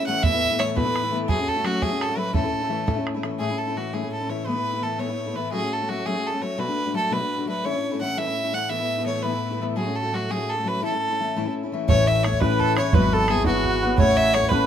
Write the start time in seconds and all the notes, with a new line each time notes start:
Already playing: A2 A3
0.00 A3
0.06 E3 A3 C#4 E4 F#5
0.23 E2 B2 E3 A3 B3 E4 E5, bodhran
0.33 E3 A3 B3 E4
0.44 bodhran
0.50 E3 A3 B3 E4
0.59 E3 A3 B3 E4 C#5, bodhran
0.69 C#5
0.75 E2 B2 E3 A3 B3 E4 B4, bodhran
0.85 E3 A3 B3 E4
0.96 bodhran
1.02 E3 A3 B3 E4
1.10 E3 A3 B3 E4
1.28 F#3 A3 C#4 F#4 G#4, bodhran
1.39 A3 C#4 F#4
1.48 A4, bodhran
1.56 A3 C#4 F#4
1.64 F#3 A3 C#4 F#4, bodhran
1.82 F#3 A3 C#4 F#4 G#4, bodhran
1.91 A3 C#4 F#4
2.01 A4, bodhran
2.09 A3 C#4 F#4
2.16 F#3 A3 C#4 F#4 B4
2.33 A2 E3 A3 C#4 E4 A4, bodhran
2.43 A3 C#4 E4
2.54 bodhran
2.61 A3 C#4 E4
2.69 E3 A3 C#4 E4
2.86 A2 E3 A3 C#4 E4, bodhran
2.96 A3 C#4 E4
3.07 bodhran
3.14 A3 C#4 E4
3.23 E3 A3 C#4 E4, bodhran
3.39 A2 E3 A3 C#4 E4 G#4
3.49 A3 C#4 E4
3.58 A4
3.67 A3 C#4 E4
3.76 E3 A3 C#4 E4 F#4
3.93 A2 E3 A3 C#4 E4 G#4
4.02 A3 C#4 E4
4.12 A4
4.21 A3 C#4 E4
4.29 E3 A3 C#4 E4 C#5
4.47 E3 A3 B3 E4 B4
4.55 A3 B3 E4
4.73 A3 B3 E4
4.82 E3 A3 B3 E4 A4
4.98 E3 A3 B3 E4 C#5
5.08 A3 B3 E4
5.26 A3 B3 E4
5.35 E3 A3 B3 E4 B4
5.52 F#3 A3 C#4 F#4 G#4
5.62 A3 C#4 F#4
5.73 A4
5.80 A3 C#4 F#4
5.89 F#3 A3 C#4 F#4
6.06 F#3 A3 C#4 F#4 G#4
6.14 A3 C#4 F#4
6.26 A4
6.32 A3 C#4 F#4
6.40 F#3 A3 C#4 F#4 C#5
6.58 B2 F#3 A3 D4 F#4 B4
6.67 A3 D4 F#4
6.85 A3 D4 F#4
6.94 F#3 A3 D4 F#4 A4
7.10 B2 F#3 A3 D4 F#4 B4
7.19 A3 D4 F#4
7.38 A3 D4 F#4
7.46 F#3 A3 D4 F#4 B4
7.64 A2 E3 A3 C#4 E4 C#5
7.73 A3 C#4 E4
7.91 A3 C#4 E4
8.01 E3 A3 C#4 E4 F#5
8.17 A2 E3 A3 C#4 E4 E5
8.27 A3 C#4 E4
8.43 A3 C#4 E4
8.52 E3 A3 C#4 E4 F#5
8.69 E3 A3 B3 E4 E5
8.79 A3 B3 E4
8.98 A3 B3 E4
9.05 E3 A3 B3 E4 C#5
9.22 E3 A3 B3 E4 B4
9.33 A3 B3 E4
9.51 A3 B3 E4
9.60 E3 A3 B3 E4
9.76 F#3 A3 C#4 F#4 G#4
9.86 A3 C#4 F#4
9.96 A4
10.02 A3 C#4 F#4
10.12 F#3 A3 C#4 F#4
10.29 F#3 A3 C#4 F#4 G#4
10.38 A3 C#4 F#4
10.50 A4
10.57 A3 C#4 F#4
10.64 F#3 A3 C#4 F#4 B4
10.81 A2 E3 A3 C#4 E4 A4
10.92 A3 C#4 E4
11.10 A3 C#4 E4
11.20 E3 A3 C#4 E4
11.36 A2 E3 A3 C#4 E4
11.45 A3 C#4 E4
11.63 A3 C#4 E4
11.72 E3 A3 C#4 E4
11.88 A1 A2 E3 A3 C#4 E4 C#5, bodhran
12.07 E5, bodhran
12.24 E3 A3 C#4 E4 C#5, bodhran
12.33 bodhran
12.40 E3 A3 C#4 E4 B4, bodhran
12.44 A2
12.59 A4, bodhran
12.77 A3 C#4 E4 C#5, bodhran
12.93 G#1 G#2 E3 F#3 B3 E4 F#4 B4, bodhran
13.12 A4, bodhran
13.28 F#3 B3 E4 F#4 G#4, bodhran
13.36 bodhran
13.45 G#2 E3 F#3 B3 E4 F#4, bodhran
13.58 F#4
13.64 bodhran
13.70 F#4
13.82 F#3 B3 E4 F#4 B4
13.98 A1 A2 A3 C#4 E4 A4 C#5, bodhran
14.17 E5, bodhran
14.34 A3 C#4 E4 A4 C#5, bodhran
14.43 bodhran
14.49 E4 A4 B4, bodhran
14.53 A2 A3 C#4